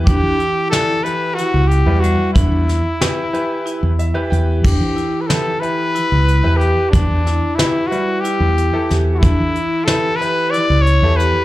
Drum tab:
CC |-------|-------|x------|-------|
HH |xxxxxxx|xxxxxxx|-xxxxxx|xxxxxxx|
SD |--o----|-oo----|--o----|-oo---o|
BD |o------|o------|o------|o------|

CC |-------|
HH |xxxxxxx|
SD |--o----|
BD |o------|